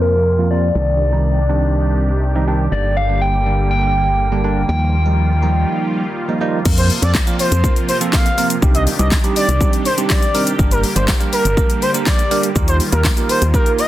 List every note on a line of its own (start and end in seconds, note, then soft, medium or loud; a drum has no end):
0.00 0.71 F2 medium
0.00 2.68 C3 medium
0.00 0.12 F3 medium
0.00 0.74 F3 medium
0.00 0.12 A#3 medium
0.00 0.74 A#3 medium
0.00 0.13 C4 medium
0.00 0.13 F4 medium
0.00 0.73 F4 medium
0.00 0.47 A#4 medium
0.38 0.47 F3 medium
0.38 0.47 A#3 medium
0.38 0.47 C4 medium
0.38 0.47 F4 medium
0.51 0.68 F3 medium
0.51 0.68 A#3 medium
0.51 0.68 C4 medium
0.51 0.68 F4 medium
0.51 2.43 D5 loud
0.75 2.68 C2 medium
0.75 1.01 D#3 medium
0.75 2.70 D#3 medium
0.75 1.01 G3 medium
0.75 1.01 C4 medium
0.75 2.70 D4 medium
0.75 1.01 D4 medium
0.75 4.65 G4 medium
1.12 1.38 D#3 medium
1.12 1.38 G3 medium
1.12 1.38 C4 medium
1.12 1.38 D#4 medium
1.49 2.09 D#3 medium
1.49 2.09 G3 medium
1.49 2.09 C4 medium
1.49 2.09 D4 medium
2.35 2.44 D#3 medium
2.35 2.44 G3 medium
2.35 2.44 C4 medium
2.35 2.44 D#4 medium
2.47 2.65 D#3 medium
2.47 2.65 G3 medium
2.47 2.65 C4 medium
2.47 2.65 D4 medium
2.72 4.65 G1 medium
2.72 2.98 D3 medium
2.72 4.67 D3 medium
2.72 4.67 G3 medium
2.72 2.98 G3 medium
2.72 6.62 A#3 medium
2.72 2.98 A#3 medium
2.72 2.98 D4 medium
2.72 2.98 D5 medium
2.97 3.21 F5 loud
3.09 3.35 D3 medium
3.09 3.35 G3 medium
3.09 3.35 A#3 medium
3.09 3.35 D4 medium
3.21 3.67 G5 loud
3.46 4.06 D3 medium
3.46 4.06 G3 medium
3.46 4.06 A#3 medium
3.46 4.06 D4 medium
3.71 4.65 G5 loud
4.32 4.40 D3 medium
4.32 4.40 G3 medium
4.32 4.41 A#3 medium
4.32 4.41 D4 medium
4.44 4.61 D3 medium
4.44 4.61 G3 medium
4.44 4.61 A#3 medium
4.44 4.61 D4 medium
4.68 5.65 D#2 medium
4.68 6.63 D#3 medium
4.68 4.94 F3 medium
4.68 6.63 G3 medium
4.68 4.94 G3 medium
4.68 4.94 A#3 medium
4.68 4.95 D#4 medium
4.68 6.63 F4 medium
4.68 6.37 G5 loud
5.05 5.31 F3 medium
5.05 5.31 G3 medium
5.05 5.31 A#3 medium
5.05 5.31 D#4 medium
5.42 6.02 F3 medium
5.42 6.02 G3 medium
5.42 6.03 A#3 medium
5.42 6.03 D#4 medium
6.28 6.37 F3 medium
6.28 6.37 G3 medium
6.28 6.37 A#3 medium
6.28 6.37 D#4 medium
6.41 6.58 F3 medium
6.41 6.58 G3 medium
6.41 6.58 A#3 medium
6.41 6.58 D#4 medium
6.65 6.90 F2 loud
6.65 10.55 C3 medium
6.65 6.91 F3 medium
6.65 8.60 F3 medium
6.65 8.60 A#3 medium
6.65 6.91 A#3 medium
6.65 6.91 C4 medium
6.65 8.60 F4 medium
6.65 6.91 F4 medium
6.65 6.91 A#4 medium
6.65 kick loud
6.65 crash loud
6.65 shaker medium
6.78 6.87 C5 medium
6.78 closed hi-hat medium
6.78 shaker medium
6.90 open hi-hat medium
6.90 shaker medium
7.02 7.19 F2 loud
7.02 7.19 F3 medium
7.02 7.19 A#3 medium
7.02 7.20 C4 medium
7.02 7.20 F4 medium
7.02 7.20 A4 medium
7.02 7.11 D5 medium
7.02 closed hi-hat medium
7.02 shaker medium
7.15 kick loud
7.15 snare loud
7.15 clap loud
7.15 tambourine medium
7.15 shaker medium
7.27 7.53 F3 medium
7.27 7.53 A#3 medium
7.27 7.53 C4 medium
7.27 7.53 F4 medium
7.27 7.53 A#4 medium
7.27 closed hi-hat medium
7.27 shaker medium
7.39 7.74 C5 medium
7.39 open hi-hat medium
7.39 shaker medium
7.52 7.68 F2 medium
7.52 closed hi-hat medium
7.52 shaker medium
7.64 7.89 F3 medium
7.64 7.90 A#3 medium
7.64 7.90 C4 medium
7.64 7.90 F4 medium
7.64 7.90 A#4 medium
7.64 kick loud
7.64 shaker medium
7.76 closed hi-hat medium
7.76 shaker soft
7.88 7.97 C5 medium
7.88 open hi-hat medium
7.88 shaker medium
8.00 8.26 F3 medium
8.00 8.26 A#3 medium
8.00 8.26 C4 medium
8.00 8.27 F4 medium
8.00 8.27 A4 medium
8.00 closed hi-hat medium
8.00 shaker medium
8.13 8.48 F5 medium
8.13 kick loud
8.13 snare medium
8.13 clap loud
8.13 tambourine medium
8.13 shaker medium
8.26 closed hi-hat medium
8.26 shaker medium
8.37 8.55 F3 medium
8.37 8.55 A#3 medium
8.37 8.55 C4 medium
8.37 8.55 F4 medium
8.37 8.55 A#4 medium
8.37 open hi-hat medium
8.37 shaker medium
8.50 closed hi-hat medium
8.50 shaker medium
8.62 8.87 C2 loud
8.62 10.57 D#3 medium
8.62 8.88 G3 medium
8.62 8.88 C4 medium
8.62 8.88 D4 medium
8.62 10.57 D4 medium
8.62 8.88 D#4 medium
8.62 12.52 G4 medium
8.62 8.88 G4 medium
8.62 kick loud
8.62 shaker medium
8.74 8.83 D#5 medium
8.74 closed hi-hat medium
8.74 shaker medium
8.87 open hi-hat medium
8.87 shaker medium
8.99 9.16 C2 loud
8.99 9.16 G3 medium
8.99 9.16 C4 medium
8.99 9.16 D4 medium
8.99 9.16 D#4 medium
8.99 9.16 G4 medium
8.99 9.08 D#5 medium
8.99 closed hi-hat medium
8.99 shaker medium
9.11 kick loud
9.11 snare loud
9.11 clap loud
9.11 tambourine medium
9.11 shaker medium
9.24 9.49 G3 medium
9.24 9.49 C4 medium
9.24 9.50 D4 medium
9.24 9.50 D#4 medium
9.24 9.50 G4 medium
9.24 closed hi-hat medium
9.24 shaker medium
9.36 9.71 D5 medium
9.36 open hi-hat medium
9.36 shaker medium
9.48 9.65 C2 medium
9.48 closed hi-hat medium
9.48 shaker medium
9.60 9.86 G3 medium
9.60 9.86 C4 medium
9.60 9.86 D4 medium
9.60 9.86 D#4 medium
9.60 9.87 G4 medium
9.60 kick loud
9.60 shaker medium
9.73 closed hi-hat medium
9.73 shaker medium
9.85 9.94 C5 medium
9.85 open hi-hat medium
9.85 shaker medium
9.97 10.23 G3 medium
9.97 10.23 C4 medium
9.97 10.23 D4 medium
9.97 10.23 D#4 medium
9.97 10.23 G4 medium
9.97 closed hi-hat medium
9.97 shaker medium
10.10 10.45 D5 medium
10.10 kick loud
10.10 snare medium
10.10 clap loud
10.10 tambourine medium
10.10 shaker medium
10.22 closed hi-hat medium
10.22 shaker medium
10.34 10.51 G3 medium
10.34 10.51 C4 medium
10.34 10.52 D4 medium
10.34 10.52 D#4 medium
10.34 10.52 A#4 medium
10.34 open hi-hat medium
10.34 shaker medium
10.47 closed hi-hat medium
10.47 shaker medium
10.59 10.84 G1 loud
10.59 12.54 D3 medium
10.59 10.85 G3 medium
10.59 13.88 G3 medium
10.59 10.85 A#3 medium
10.59 13.88 A#3 medium
10.59 10.85 D4 medium
10.59 10.85 G4 medium
10.59 10.85 A#4 medium
10.59 kick loud
10.59 shaker medium
10.71 10.80 A#4 medium
10.71 closed hi-hat medium
10.71 shaker medium
10.84 open hi-hat medium
10.84 shaker medium
10.96 11.12 G1 loud
10.96 11.13 G3 medium
10.96 11.13 A#3 medium
10.96 11.13 D4 medium
10.96 11.13 G4 medium
10.96 11.05 C5 medium
10.96 11.13 C5 medium
10.96 closed hi-hat medium
10.96 shaker medium
11.08 kick loud
11.08 snare loud
11.08 clap loud
11.08 tambourine medium
11.08 shaker medium
11.20 11.46 G3 medium
11.20 11.46 A#3 medium
11.20 11.46 D4 medium
11.20 11.46 G4 medium
11.20 11.46 A#4 medium
11.20 closed hi-hat medium
11.20 shaker medium
11.33 11.67 A#4 medium
11.33 open hi-hat medium
11.33 shaker medium
11.45 11.61 G1 medium
11.45 closed hi-hat medium
11.45 shaker medium
11.57 11.83 G3 medium
11.57 11.83 A#3 medium
11.57 11.83 D4 medium
11.57 11.83 G4 medium
11.57 11.83 A#4 medium
11.57 kick loud
11.57 shaker medium
11.70 closed hi-hat medium
11.70 shaker medium
11.82 11.91 C5 medium
11.82 open hi-hat medium
11.82 shaker medium
11.94 12.20 G3 medium
11.94 12.20 A#3 medium
11.94 12.20 D4 medium
11.94 12.20 G4 medium
11.94 12.20 A#4 medium
11.94 closed hi-hat medium
11.94 shaker medium
12.06 12.41 D5 medium
12.06 kick loud
12.06 snare loud
12.06 clap loud
12.06 tambourine medium
12.06 shaker medium
12.19 closed hi-hat medium
12.19 shaker medium
12.31 12.48 G3 medium
12.31 12.48 A#3 medium
12.31 12.48 D4 medium
12.31 12.48 G4 medium
12.31 12.48 A#4 medium
12.31 open hi-hat medium
12.31 shaker medium
12.43 closed hi-hat medium
12.43 shaker medium
12.55 12.80 D#2 loud
12.55 13.88 D#3 medium
12.55 12.81 A#3 medium
12.55 12.81 D#4 medium
12.55 12.81 F4 medium
12.55 13.88 F4 medium
12.55 12.81 G4 medium
12.55 12.81 A#4 medium
12.55 kick loud
12.55 shaker medium
12.68 12.77 C5 medium
12.68 closed hi-hat medium
12.68 shaker medium
12.80 open hi-hat medium
12.80 shaker medium
12.92 13.09 D#2 loud
12.92 13.10 A#3 medium
12.92 13.10 D#4 medium
12.92 13.10 F4 medium
12.92 13.10 G4 medium
12.92 13.01 A#4 medium
12.92 13.10 A#4 medium
12.92 closed hi-hat medium
12.92 shaker medium
13.04 kick loud
13.04 snare loud
13.04 clap loud
13.04 tambourine loud
13.04 shaker medium
13.17 13.43 A#3 medium
13.17 13.43 D#4 medium
13.17 13.43 F4 medium
13.17 13.43 G4 medium
13.17 13.43 A#4 medium
13.17 closed hi-hat medium
13.17 shaker medium
13.29 13.47 C5 medium
13.29 open hi-hat medium
13.29 shaker medium
13.42 13.58 D#2 medium
13.42 closed hi-hat medium
13.42 shaker medium
13.54 13.80 A#3 medium
13.54 13.80 D#4 medium
13.54 13.80 F4 medium
13.54 13.80 G4 medium
13.54 13.71 A#4 medium
13.54 13.80 A#4 medium
13.54 kick loud
13.54 shaker medium
13.66 closed hi-hat medium
13.66 shaker medium
13.79 13.87 D#5 medium
13.79 open hi-hat medium
13.79 shaker medium